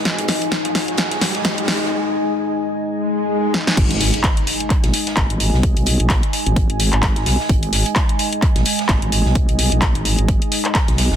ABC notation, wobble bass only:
X:1
M:4/4
L:1/16
Q:"Swing 16ths" 1/4=129
K:G#m
V:1 name="Wobble bass" clef=bass
G,,,3 z6 A,,, z2 G,,,3 B,,, | z16 | G,,,3 z6 A,,, z2 G,,,3 B,,,- | B,,, B,,,2 A,,,2 z2 G,,,2 G,,,2 G,,,3 B,,, z |
G,,,3 z6 A,,, z2 G,,,3 B,,,- | B,,, B,,,2 A,,,2 G,,,2 G,,,2 z4 B,,,2 G,,, |]